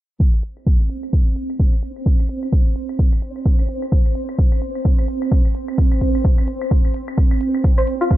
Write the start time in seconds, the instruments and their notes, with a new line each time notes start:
0.20 synth texture C4 C5, kick
0.34 claves
0.43 closed hi-hat
0.57 claves
0.66 kick
0.80 claves
0.90 closed hi-hat
1.03 claves
1.13 kick
1.27 claves
1.36 closed hi-hat
1.50 claves
1.59 kick
1.73 claves
1.83 closed hi-hat
1.96 claves
2.06 kick
2.20 claves
2.29 closed hi-hat
2.43 claves
2.53 kick
2.66 claves
2.76 closed hi-hat
2.89 claves
2.99 kick
3.13 claves
3.22 closed hi-hat
3.36 claves
3.46 kick
3.59 claves
3.69 closed hi-hat
3.82 claves
3.92 kick
4.06 claves
4.15 closed hi-hat
4.29 claves
4.39 kick
4.52 claves
4.62 closed hi-hat
4.75 claves
4.85 kick
4.99 claves
5.08 closed hi-hat
5.22 claves
5.32 kick
5.45 claves
5.55 closed hi-hat
5.68 claves
5.78 kick
5.92 claves
6.01 kick, closed hi-hat
6.15 claves
6.25 kick
6.38 claves
6.48 closed hi-hat
6.62 claves
6.71 kick
6.85 claves
6.94 closed hi-hat
7.08 claves
7.18 kick
7.31 claves
7.41 closed hi-hat
7.55 claves
7.64 synth texture G4, kick, shaker
7.78 synth pluck C5, claves, shaker
7.87 closed hi-hat, shaker
8.01 synth pluck F4, claves, shaker
8.10 kick, shaker